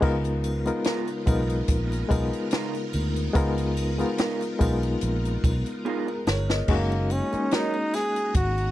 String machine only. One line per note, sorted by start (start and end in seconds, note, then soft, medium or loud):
0.01 6.65 C#3 medium
0.01 6.65 B3 medium
0.01 6.64 D#4 medium
0.01 6.64 F4 medium
0.01 6.64 A#4 medium
6.68 8.71 F#4 medium
6.68 8.71 D#5 medium
6.68 8.71 A#5 medium